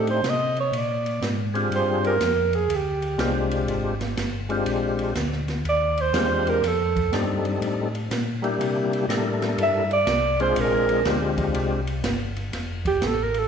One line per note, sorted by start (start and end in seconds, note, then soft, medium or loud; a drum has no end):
0.00 0.22 A2 medium
0.00 0.20 A3 medium
0.00 0.21 C4 medium
0.00 0.21 D4 medium
0.00 0.21 D#4 medium
0.00 0.21 G4 medium
0.07 0.30 C5 medium
0.07 ride soft
0.23 0.71 C3 medium
0.23 snare medium
0.23 hi-hat pedal medium
0.23 ride medium
0.29 0.59 D#5 medium
0.56 0.79 C#5 medium
0.56 ride soft
0.72 1.20 A#2 medium
0.72 ride medium
0.78 1.25 D5 medium
1.06 ride soft
1.22 1.70 G#2 medium
1.22 snare medium
1.22 hi-hat pedal medium
1.22 ride medium
1.54 2.17 C4 medium
1.54 2.17 D4 medium
1.54 2.18 F4 medium
1.54 2.18 G4 medium
1.54 2.17 G#4 medium
1.54 ride soft
1.71 2.19 G2 medium
1.71 ride medium
1.76 2.04 C5 medium
2.04 2.57 A#4 medium
2.04 ride soft
2.20 2.68 F2 medium
2.20 snare medium
2.20 hi-hat pedal medium
2.20 ride medium
2.53 2.77 G#4 medium
2.53 ride soft
2.69 3.17 D2 medium
2.69 ride medium
2.75 3.22 G4 medium
3.02 ride soft
3.18 3.66 C2 medium
3.18 3.94 G#3 medium
3.18 3.94 C4 medium
3.18 3.94 D4 medium
3.18 3.95 F4 medium
3.18 3.95 G4 medium
3.18 snare medium
3.18 hi-hat pedal soft
3.18 ride medium
3.51 ride soft
3.68 4.16 G#1 medium
3.68 ride medium
4.01 snare soft
4.01 ride soft
4.17 4.65 G1 medium
4.17 snare medium
4.17 hi-hat pedal medium
4.17 ride medium
4.49 5.12 G#3 medium
4.49 5.13 C4 medium
4.49 5.13 D4 medium
4.49 5.13 F4 medium
4.49 5.14 G4 medium
4.49 ride soft
4.66 5.14 A#1 medium
4.66 ride medium
4.99 ride soft
5.15 5.64 D2 loud
5.15 snare medium
5.15 hi-hat pedal medium
5.15 ride medium
5.32 snare soft
5.48 snare soft
5.48 ride soft
5.64 6.13 D#2 medium
5.64 ride medium
5.69 6.03 D5 loud
5.97 6.51 C5 loud
5.97 ride soft
6.13 6.62 E2 medium
6.13 6.63 G#3 medium
6.13 6.64 C4 medium
6.13 6.64 D4 medium
6.13 6.64 F4 medium
6.13 6.64 G4 medium
6.13 snare medium
6.13 hi-hat pedal medium
6.13 ride medium
6.47 6.69 A#4 medium
6.47 ride soft
6.63 7.11 F2 medium
6.63 snare soft
6.63 ride medium
6.68 7.15 A4 medium
6.96 kick medium
6.96 ride soft
7.12 7.60 G2 medium
7.12 7.88 G3 medium
7.12 7.88 C4 medium
7.12 7.88 D4 medium
7.12 7.88 D#4 medium
7.12 7.88 A4 medium
7.12 snare medium
7.12 hi-hat pedal medium
7.12 ride medium
7.45 ride soft
7.61 8.09 A2 medium
7.61 ride medium
7.95 ride soft
8.10 8.58 A#2 medium
8.10 snare medium
8.10 hi-hat pedal medium
8.10 ride medium
8.42 9.05 G3 medium
8.42 9.06 A#3 medium
8.42 9.06 D4 medium
8.42 9.06 E4 medium
8.42 9.06 G4 medium
8.42 ride soft
8.59 9.07 C3 medium
8.59 ride medium
8.93 ride soft
9.08 9.56 A2 medium
9.08 9.84 G3 medium
9.08 9.84 D4 medium
9.08 9.85 E4 medium
9.08 9.85 A4 medium
9.08 9.84 A#4 medium
9.08 snare medium
9.08 hi-hat pedal medium
9.08 ride medium
9.42 snare medium
9.42 ride soft
9.58 10.06 G2 medium
9.58 ride medium
9.63 9.91 E5 loud
9.91 10.38 D5 loud
9.91 ride soft
10.06 10.55 C2 medium
10.06 snare medium
10.06 hi-hat pedal medium
10.06 ride medium
10.40 11.02 G#3 medium
10.40 11.02 C4 medium
10.40 11.02 D4 medium
10.40 11.03 F4 medium
10.40 11.03 G#4 medium
10.40 10.62 C5 medium
10.40 ride soft
10.56 11.04 A#1 medium
10.56 ride medium
10.61 11.08 A#4 medium
10.89 ride soft
11.04 11.53 D2 medium
11.04 11.80 G#3 medium
11.04 11.81 C4 medium
11.04 11.81 D4 medium
11.04 11.81 F4 medium
11.04 11.81 G4 medium
11.04 snare medium
11.04 hi-hat pedal medium
11.04 ride medium
11.38 kick medium
11.38 ride soft
11.54 12.02 C2 medium
11.54 ride medium
11.87 ride medium
12.03 12.51 G1 medium
12.03 snare medium
12.03 hi-hat pedal medium
12.03 ride medium
12.36 ride soft
12.52 13.00 F1 medium
12.52 snare soft
12.52 ride medium
12.85 13.08 G4 loud
12.85 kick medium
12.85 ride medium
13.01 13.48 A1 loud
13.01 snare medium
13.01 hi-hat pedal medium
13.01 ride medium
13.06 13.24 A4 medium
13.23 13.40 A#4 medium
13.34 ride medium
13.39 13.48 A4 medium